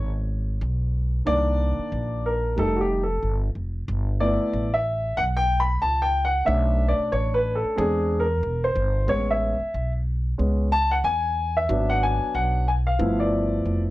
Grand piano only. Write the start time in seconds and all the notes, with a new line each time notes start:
Already playing: G#3 B3 C#4
1.25 D#3 A#3 D4 D5
2.26 A#4
2.56 G3 A3 D#4 A4
2.76 F#4
2.81 G4
3.03 A4
4.20 A3 B3 E4 D5
4.74 E5
5.17 F#5
5.37 G5
5.60 B5
5.82 A5
6.02 G5
6.25 F#5
6.45 A3 C#4 D4 E5
6.88 D5
7.12 C#5
7.34 B4
7.55 A4
7.76 G#3 C4 D4 G#4
8.20 A#4
8.64 C5
9.07 G#3 B3 C#4 C#5
9.31 E5
10.38 G#3 B3 C#4
10.72 A5
10.91 F#5
11.04 G#5
11.57 E5
11.69 F#3 B3 D4
11.90 F#5
12.03 G#5
12.35 F#5
12.68 G#5
12.87 F5
12.99 F3 A3 B3 E4
13.20 D5